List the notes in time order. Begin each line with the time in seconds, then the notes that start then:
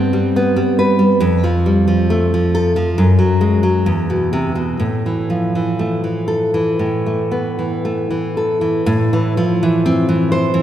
Already playing: G2 G3 B3 C4
0.13 G3
0.36 B3
0.56 G3
0.79 B4
0.99 G3
1.20 F2
1.44 F3
1.66 G3
1.88 F3
2.10 A3
2.34 F3
2.55 A4
2.76 F3
2.98 F#2
3.19 F#3
3.41 G#3
3.63 F#3
3.86 E2
4.10 B2
4.33 C3
4.55 B2
4.79 A2
5.06 E3
5.30 F3
5.55 E3
5.79 A3
6.04 E3
6.28 A4
6.54 E3
6.79 A2
7.06 A3
7.31 B3
7.59 E3
7.85 A3
8.11 E3
8.37 A4
8.61 E3
8.86 A2
9.13 E3
9.37 F3
9.63 E3
9.86 C4
10.09 E3
10.32 C5
10.54 E3